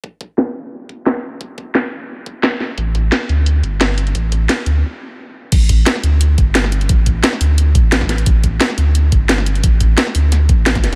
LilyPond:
<<
  \new Staff \with { instrumentName = "Sub bass" } { \clef bass \time 4/4 \key g \major \tempo 4 = 175 r1 | r1 | a,,4 r8 d,4 g,,4. | a,,4 r8 d,8 r2 |
a,,4 r8 d,4 g,,4. | a,,4 r8 d,4 a,,4. | a,,4 r8 d,4 g,,4. | a,,4 r8 d,4 a,,8. a,,16 e,,8 | }
  \new DrumStaff \with { instrumentName = "Drums" } \drummode { \time 4/4 bd8 bd8 sn4 r8 bd8 sn4 | bd8 bd8 sn4 r8 bd8 sn8 sn8 | <hh bd>8 <hh bd>8 <hh sn>8 hh8 hh8 <hh bd>8 <hh sn>8 hh16 hh16 | <hh bd>8 <hh bd>8 <hh sn>8 hh8 r4 r4 |
<cymc hh bd>8 <hh bd>8 <hh sn>16 sn16 hh8 hh8 <hh bd>8 <hh sn>16 sn16 hh16 hh16 | <hh bd>8 <hh bd>8 <hh sn>16 sn16 hho8 hh8 <hh bd>8 <hh sn>16 <bd sn>16 <hh sn>16 hh16 | <hh bd>8 <hh bd>8 <hh sn>16 sn16 hh8 hh8 <hh bd>8 <hh sn>16 sn16 hh16 hh16 | <hh bd>8 <hh bd>8 <hh sn>16 sn16 hho8 <hh sn>8 <hh bd>8 <hh sn>16 <hh bd sn>16 <hh sn>8 | }
>>